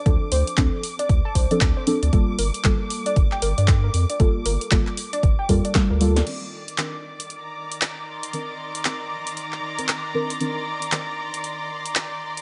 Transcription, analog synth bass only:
X:1
M:4/4
L:1/16
Q:"Swing 16ths" 1/4=116
K:Cdor
V:1 name="Analog synth bass" clef=bass
D,, z D,, z D,, z3 D,, z C,, z D,, z2 D,, | G,,, z G,,, z G,,, z3 G,,, z G,,, G,,3 F,, z | G,,, z G,,, z G,,, z3 G,,, z F,, z2 D,,3 | z16 |
z16 | z16 |]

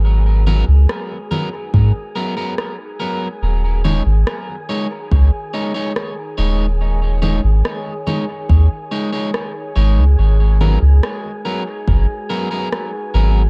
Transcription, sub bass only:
X:1
M:4/4
L:1/16
Q:1/4=71
K:G#m
V:1 name="Sub bass" clef=bass
G,,,3 C,, z4 G,, z6 z | D,,,3 G,,, z4 C,, z4 z D,,,2- | D,,,3 G,,, z4 D,, z4 z G,,, C,, | G,,,3 C,, z4 F,,, z4 z G,,,2 |]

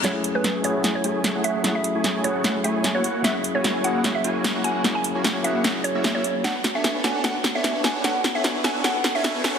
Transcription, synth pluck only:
X:1
M:4/4
L:1/16
Q:"Swing 16ths" 1/4=150
K:F#m
V:1 name="Synth pluck"
c2 z B2 z c2 z c z4 e2 | z e2 z3 c3 z e2 z c2 z | e2 z c2 z f2 z e z4 g2 | z g2 z3 e3 z c2 z c2 z |
f2 z e2 z g2 f2 z e2 z g2 | f2 z e2 z g2 f2 z e2 z g2 |]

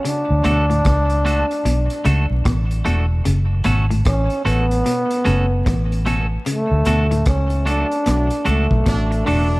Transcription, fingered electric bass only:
X:1
M:4/4
L:1/16
Q:"Swing 16ths" 1/4=75
K:Dlyd
V:1 name="Fingered electric bass" clef=bass
z D,, D,,2 C,,3 z B,,, z C,, B,,, A,,,2 E,,,2 | F,,,2 G,,,2 A,,, z A,,,2 z2 F,,,2 A,,,4 | z D,, D,,2 C,,3 z B,,, z C,, B,,, A,,,2 E,,,2 |]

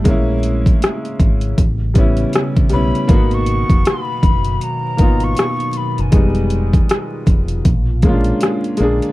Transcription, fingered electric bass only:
X:1
M:4/4
L:1/16
Q:"Swing 16ths" 1/4=79
K:Abdor
V:1 name="Fingered electric bass" clef=bass
B,,,4 z2 A,,,2 =A,,,4 z2 =B,,, z | A,,,3 F,,, z2 G,,,2 z2 A,,,2 z3 G,,, | F,,,4 z2 F,,,2 B,,,4 z2 B,,, z |]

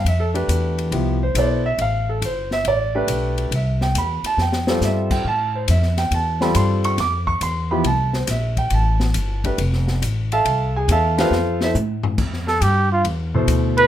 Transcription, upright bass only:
X:1
M:4/4
L:1/8
Q:"Swing" 1/4=138
K:Flyd
V:1 name="Upright bass" clef=bass
F,,2 E,,2 C,,2 B,,,2 | A,,,2 G,,,2 A,,,2 B,,,2 | C,,2 E,, z F,,2 G,,2 | A,,2 F,,2 E,,2 G,,2 |
F,,2 E,,2 C,,2 _B,,,2 | A,,,2 G,,,2 F,,,2 A,,,2 | C,,2 E,,2 F,,2 A,,2 | F,,2 G,,2 E,,2 D,,2 |]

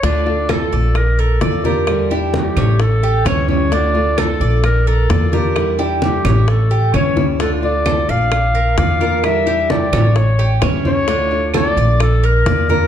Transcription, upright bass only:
X:1
M:4/4
L:1/8
Q:1/4=130
K:Dm
V:1 name="Upright bass" clef=bass
D,,3 B,,,3 E,,2- | E,,3 A,,,3 D,,2- | D,,3 B,,,3 E,,2- | E,,3 A,,,3 D,,2- |
D,,3 B,,,3 E,,2- | E,,3 A,,,3 D,,2- | D,,3 B,,,3 E,,2 |]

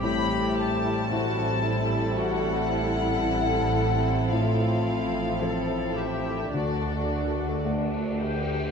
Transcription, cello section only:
X:1
M:4/4
L:1/8
Q:1/4=55
K:Ador
V:1 name="Cello section"
G2 F E F E3 | =F2 A G ^F3 z |]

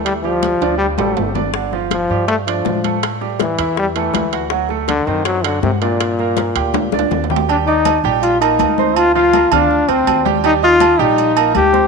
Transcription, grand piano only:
X:1
M:4/4
L:1/8
Q:1/4=162
K:Gm
V:1 name="Grand piano"
[A,A] [G,G]2 [Dd]2 [A,A]2 [Dd] | [D,D] [F,F]2 [G,G]2 [Dd]2 [A,A]- | [A,A] [G,G]2 [=E=e]2 [A,A]2 [^F^f] | [^F,^F] [A,A]2 [Cc]2 [F^f]2 [Dd]- |
[Dd] [B,B]2 [Gg]2 [Dd]2 [Gg] | [G,Gg] [Edd']2 [G,Gg]2 [B,Bb]2 [Ccc']- | [Ccc'] [F,Ff] [B,Bb] [Fff']2 [Ccc']2 [G,Gg] | [G,Gg] [Eee']2 [G,Gg]2 [B,Bb]2 [Ccc'] |]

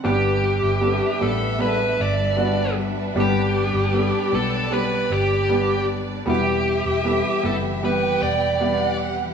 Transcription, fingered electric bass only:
X:1
M:4/4
L:1/16
Q:1/4=77
K:G
V:1 name="Fingered electric bass" clef=bass
G,,,3 G,,,2 z A,,,4 G,,,6 | G,,,3 G,,,2 z B,,,4 G,,,6 | E,,,3 E,,,2 z F,,,4 E,,,6 |]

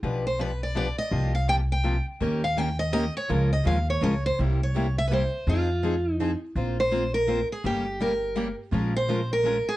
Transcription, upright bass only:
X:1
M:3/4
L:1/8
Q:"Swing" 1/4=166
K:Bbdor
V:1 name="Upright bass" clef=bass
=B,,,6 | C,,6 | E,,6 | D,,2 E,,2 D,,2 |
C,,6 | F,,6 | B,,,6 | G,,,6 |
B,,,6 |]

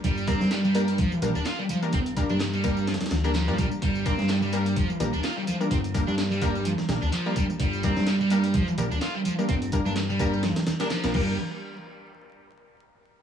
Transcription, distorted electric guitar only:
X:1
M:4/4
L:1/16
Q:"Swing 16ths" 1/4=127
K:Gm
V:1 name="Distorted electric guitar" clef=bass
G,2 C2 G, G,3 F, z2 D F G, F, z | C z2 D z G,3 F, z2 D F,2 G, z | G,2 C2 G, G,3 F, z2 D F G, F, z | C z2 D z G,3 F, z2 D F,2 G, z |
G,2 C2 G, G,3 F, z2 D F G, F, z | C z2 D z G,3 F, z2 D F,2 G,2 | z16 |]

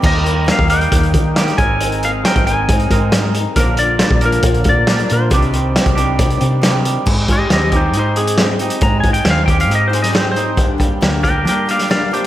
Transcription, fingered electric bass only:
X:1
M:4/4
L:1/16
Q:1/4=137
K:Ablyd
V:1 name="Fingered electric bass" clef=bass
E,,4- E,, E,,3 E,,2 E,4 A,,,2- | A,,,4- A,,, A,,,3 A,,2 A,,6 | B,,,4- B,,, B,,,3 B,,,2 B,,4 B,,2 | C,,4- C,, C,,3 C,2 C,6 |
A,,4 E,,4 A,,8 | A,,4 E,,4 A,,8 | G,,4 D,,4 G,8 |]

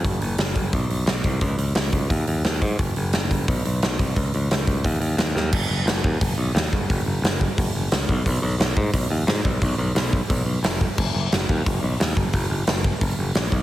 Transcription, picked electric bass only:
X:1
M:4/4
L:1/8
Q:1/4=176
K:D#m
V:1 name="Picked electric bass" clef=bass
F,,, F,,, F,,, F,,, B,,, B,,, B,,, ^B,,, | C,, C,, C,, C,, D,, D,, D,, G,, | F,,, F,,, F,,, F,,, B,,, B,,, B,,, ^B,,, | C,, C,, C,, C,, D,, D,, D,, D,, |
F,,, F,,, F,,, D,, F,,, B,,, D,, F,,, | F,,, F,,, F,,,2 F,,, F,,, C,, B,,, | B,,, B,,, B,,, G,, B,,, D,, G,, B,,, | B,,, B,,, B,,,2 B,,, B,,, E,,,2 |
F,,, F,,, F,,, D,, F,,, B,,, D,, F,,, | F,,, F,,, F,,,2 F,,, F,,, A,,, B,,, |]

